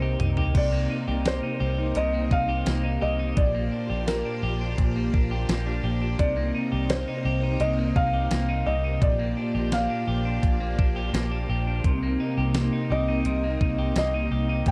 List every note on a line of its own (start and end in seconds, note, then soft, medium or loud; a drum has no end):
0.00 0.15 C2 medium
0.00 0.54 C3 medium
0.00 0.72 A#3 medium
0.00 0.54 C4 medium
0.00 0.19 D#4 medium
0.00 0.54 D#4 medium
0.00 0.37 G4 medium
0.00 0.52 A#4 medium
0.00 0.16 C5 medium
0.20 0.51 C2 medium
0.20 0.90 D#4 medium
0.20 closed hi-hat soft
0.20 mid tom medium
0.37 1.07 G4 medium
0.37 floor tom medium
0.55 0.86 C2 loud
0.55 1.95 C3 medium
0.55 3.34 C3 medium
0.55 3.34 A#3 medium
0.55 3.34 C4 medium
0.55 3.34 D#4 medium
0.55 3.34 A#4 medium
0.55 1.29 D5 medium
0.55 kick loud
0.55 closed hi-hat medium
0.55 crash medium
0.72 1.25 A#3 medium
0.90 1.42 D#4 medium
1.08 1.39 C2 loud
1.08 1.60 G4 medium
1.25 2.14 A#3 medium
1.25 1.99 C5 medium
1.25 snare loud
1.25 closed hi-hat medium
1.25 tambourine medium
1.43 1.77 D#4 medium
1.60 1.92 C2 loud
1.60 2.48 G4 medium
1.78 2.30 D#4 medium
1.95 2.27 C2 medium
1.95 3.44 C3 medium
1.95 2.33 D#5 loud
1.95 closed hi-hat medium
2.14 2.66 A#3 medium
2.31 2.62 C2 medium
2.31 2.82 D#4 medium
2.31 3.05 F5 loud
2.31 kick medium
2.49 3.01 G4 medium
2.66 2.98 C2 loud
2.66 3.54 A#3 medium
2.66 snare loud
2.66 closed hi-hat medium
2.66 tambourine medium
2.84 3.18 D#4 medium
3.01 3.33 C2 medium
3.01 3.89 G4 medium
3.01 3.38 D#5 medium
3.19 3.44 D#4 soft
3.37 3.68 A#1 loud
3.37 4.77 A#2 medium
3.37 6.16 A#3 medium
3.37 6.17 F4 medium
3.37 6.17 G4 medium
3.37 6.17 C5 medium
3.37 6.17 D5 medium
3.37 4.10 D5 medium
3.37 kick loud
3.37 closed hi-hat medium
3.55 4.07 A#3 medium
3.72 4.24 D4 medium
3.90 4.21 A#1 medium
3.90 4.43 G4 medium
4.07 4.96 A#3 medium
4.07 5.45 A#4 medium
4.07 snare medium
4.07 closed hi-hat medium
4.07 tambourine medium
4.25 4.60 D4 medium
4.43 4.74 A#1 medium
4.43 5.31 G4 medium
4.61 5.12 D4 medium
4.78 5.09 A#1 loud
4.78 6.27 A#2 medium
4.78 kick medium
4.78 closed hi-hat medium
4.96 5.48 A#3 medium
5.13 5.45 A#1 medium
5.13 5.65 D4 medium
5.13 kick medium
5.31 5.83 G4 medium
5.49 5.80 A#1 medium
5.49 6.36 A#3 medium
5.49 snare loud
5.49 closed hi-hat medium
5.49 tambourine medium
5.66 6.00 D4 medium
5.84 6.15 A#1 medium
5.84 6.71 G4 medium
6.02 6.26 D4 medium
6.19 6.51 C2 loud
6.19 8.99 C3 medium
6.19 7.60 C3 medium
6.19 8.99 A#3 medium
6.19 8.99 C4 medium
6.19 8.99 D#4 medium
6.19 8.99 A#4 medium
6.19 6.92 D5 medium
6.19 kick loud
6.19 closed hi-hat medium
6.37 6.90 A#3 medium
6.55 7.07 D#4 medium
6.72 7.04 C2 loud
6.72 7.25 G4 medium
6.90 7.78 A#3 medium
6.90 7.57 C5 medium
6.90 snare loud
6.90 closed hi-hat medium
6.90 tambourine medium
7.08 7.42 D#4 medium
7.25 7.56 C2 medium
7.25 8.13 G4 medium
7.43 7.94 D#4 medium
7.60 7.91 C2 loud
7.60 9.09 C3 medium
7.60 7.97 D#5 loud
7.60 closed hi-hat medium
7.78 8.31 A#3 medium
7.96 8.27 C2 medium
7.96 8.48 D#4 medium
7.96 8.69 F5 loud
7.96 kick loud
8.13 8.66 G4 medium
8.31 8.62 C2 medium
8.31 9.19 A#3 medium
8.31 snare loud
8.31 closed hi-hat medium
8.31 tambourine medium
8.49 8.83 D#4 medium
8.66 8.98 C2 medium
8.66 9.54 G4 medium
8.66 9.03 D#5 medium
8.84 9.09 D#4 medium
9.02 9.33 A#1 loud
9.02 10.41 A#2 medium
9.02 11.81 A#3 medium
9.02 11.82 F4 medium
9.02 11.81 G4 medium
9.02 11.81 C5 medium
9.02 11.82 D5 medium
9.02 9.75 D5 medium
9.02 kick loud
9.02 closed hi-hat medium
9.19 9.72 A#3 medium
9.37 9.89 D4 medium
9.55 9.86 A#1 medium
9.55 10.07 G4 medium
9.72 10.60 A#3 medium
9.72 11.10 F5 medium
9.72 snare loud
9.72 closed hi-hat medium
9.72 tambourine medium
9.90 10.24 D4 medium
10.08 10.39 A#1 medium
10.08 10.96 G4 medium
10.25 10.77 D4 medium
10.42 10.74 A#1 loud
10.42 11.91 A#2 medium
10.42 kick medium
10.42 closed hi-hat medium
10.60 11.13 A#3 medium
10.78 11.10 A#1 loud
10.78 11.30 D4 medium
10.78 kick loud
10.96 11.49 G4 medium
11.14 11.45 A#1 loud
11.14 12.02 A#3 medium
11.14 snare loud
11.14 closed hi-hat medium
11.14 tambourine medium
11.32 11.66 D4 medium
11.49 11.80 A#1 medium
11.49 12.37 G4 medium
11.67 11.92 D4 medium
11.84 12.15 C2 loud
11.84 14.64 C3 medium
11.84 13.25 C3 medium
11.84 14.64 A#3 medium
11.84 14.64 C4 medium
11.84 14.64 D#4 medium
11.84 14.64 A#4 medium
11.84 kick loud
11.84 closed hi-hat medium
12.03 12.55 A#3 medium
12.20 12.72 D#4 medium
12.38 12.68 C2 loud
12.38 12.90 G4 medium
12.54 13.43 A#3 medium
12.54 snare loud
12.54 closed hi-hat medium
12.54 tambourine medium
12.73 13.07 D#4 medium
12.90 13.21 C2 medium
12.90 13.78 G4 medium
12.90 13.93 D#5 medium
13.08 13.60 D#4 medium
13.25 13.57 C2 loud
13.25 14.71 C3 medium
13.25 closed hi-hat medium
13.44 13.96 A#3 medium
13.61 13.92 C2 medium
13.61 14.13 D#4 medium
13.61 kick medium
13.79 14.31 G4 medium
13.96 14.27 C2 loud
13.96 14.71 A#3 medium
13.96 14.70 D#5 medium
13.96 snare loud
13.96 closed hi-hat medium
13.96 tambourine medium
14.14 14.48 D#4 medium
14.31 14.62 C2 medium
14.31 14.71 G4 medium
14.49 14.71 D#4 medium
14.66 14.71 A#1 loud
14.66 14.71 A#2 medium
14.66 14.71 A#3 medium
14.66 14.71 F4 medium
14.66 14.71 G4 medium
14.66 14.71 C5 medium
14.66 14.71 D5 medium
14.66 14.71 G5 medium
14.66 kick loud
14.66 closed hi-hat medium